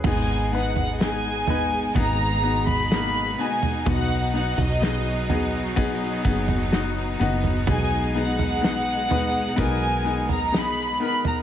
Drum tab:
CC |x---------------|----------------|----------------|
SD |----o-------o---|----o-------o---|----o-------o---|
FT |o--o--o-o--o---o|o--o--o----o---o|o--o--o----o---o|
BD |o-------o-------|o-------o-o-----|o-------o-------|